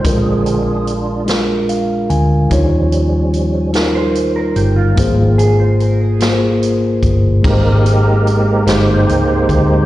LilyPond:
<<
  \new Staff \with { instrumentName = "Clean electric guitar" } { \time 6/8 \key aes \major \tempo 4. = 49 r2. | r4. r16 c''8 bes'16 g'16 f'16~ | f'16 r16 aes'16 c''16 bes'16 aes'4. r16 | r2. | }
  \new Staff \with { instrumentName = "Tine electric piano" } { \time 6/8 \key aes \major <aes d' f' bes'>4 r8 <aes d' f' bes'>4 r8 | <g ees' f' des''>4 r8 <g ees' f' bes'>4 r8 | <bes f' aes' c''>4 r8 <bes f' aes' bes' c''>4 r8 | <aes ees' g' bes' c''>4 r8 <aes ees' g' bes'>4 r8 | }
  \new Staff \with { instrumentName = "Tine electric piano" } { \clef bass \time 6/8 \key aes \major bes,4. r8 f''8 aes''8 | ees4. r4. | aes,4. r4. | aes,4. r4. | }
  \new Staff \with { instrumentName = "Tonewheel organ" } { \time 6/8 \key aes \major << { aes'4 r2 | r2. | r2. | bes'4. c''4. | } \\ { <d' f'>4. r4. | r2. | r2. | <ees' g'>4. <ees' g'>4. | } >> }
  \new Staff \with { instrumentName = "Tonewheel organ" } { \clef bass \time 6/8 \key aes \major <d aes c'>8 r2 r8 | <f g des'>4. <f g des'>8 r4 | <f bes c'>8 r2 r8 | <aes bes c'>2. | }
  \new Staff \with { instrumentName = "Fingered electric bass" } { \clef bass \time 6/8 \key aes \major bes,,2~ bes,,8 d,8 | ees,2~ ees,8 g,,8 | aes,,2~ aes,,8 g,,8 | aes,,4. g,,8 des,8 d,8 | }
  \new DrumStaff \with { instrumentName = "Drums" } \drummode { \time 6/8 <hh bd>8 hh8 hh8 <hh sn>8 hh8 hh8 | <hh bd>8 hh8 hh8 <hh sn>8 hh8 hh8 | <hh bd>8 hh8 hh8 <hh sn>8 hh8 <hh bd>8 | <cymc bd>8 hh8 hh8 <hh sn>8 hh8 <hh bd>8 | }
>>